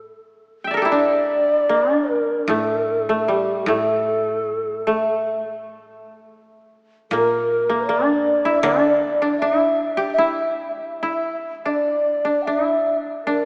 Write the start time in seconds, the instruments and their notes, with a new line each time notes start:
Already playing: koto A3
0.64 koto E5 G5
0.71 koto A#4 D5
0.77 koto A4
0.82 koto E4 G4
0.88 koto D4, shakuhachi D5
1.69 koto A#3
1.94 koto D4
2.11 shakuhachi A#4
2.48 koto A2 A3, shakuhachi A4
3.09 koto A3
3.26 koto G3, shakuhachi A4
3.31 shakuhachi G4
3.66 koto A2 A3, shakuhachi A4
4.87 koto A3
7.10 koto A#2 A#3, shakuhachi A#4
7.69 koto A#3
7.88 koto D4, shakuhachi D5
8.45 koto E4
8.63 koto D3 D4, shakuhachi D5
9.22 koto D4
9.37 shakuhachi E5
9.42 koto E4
9.97 koto G4
10.13 shakuhachi E5
10.18 koto E4
11.03 koto E4
11.64 koto D4, shakuhachi E5
11.69 shakuhachi D5
12.25 koto D4
12.42 shakuhachi E5 G5
12.47 koto E4
13.24 koto D4, shakuhachi A#4